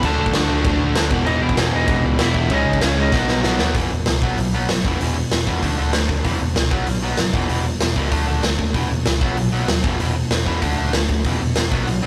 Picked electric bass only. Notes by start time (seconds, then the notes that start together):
0.03 D2
0.19 D2
0.35 D2
0.50 D2
0.65 D2
0.81 D2
0.97 D2
1.11 E1
1.27 E1
1.42 E1
1.57 E1
1.73 E1
1.88 E1
2.05 C#2
2.20 E1
2.50 C#2
2.66 C#2
2.81 C#2
2.97 C#2
3.12 B1
3.28 B1
3.44 B1
3.60 D#2
3.75 E1
3.92 E1
4.08 C#2
4.22 B1
4.37 B1
4.53 B1
4.69 F#1
4.85 E1
5.00 E1
5.32 E1
5.47 E2
5.63 D2
5.79 D2
5.94 D2
6.09 D2
6.25 E1
6.40 E1
6.56 C#2
6.71 B1
6.87 B1
7.03 B1
7.19 F#1
7.34 E1
7.50 E1
7.81 E1
7.96 C#2
8.12 D2
8.27 D2
8.43 D2
8.59 D#2
8.75 E1
8.90 E1
9.06 C#2
9.21 B1
9.37 B1
9.53 B1
9.68 D#2
9.84 E1
10.00 E1
10.31 E1
10.46 E2
10.62 D2
10.78 D2
10.93 D2
11.10 D2
11.25 E1
11.41 E1
11.57 E1
11.71 B1
11.88 B1
12.03 B1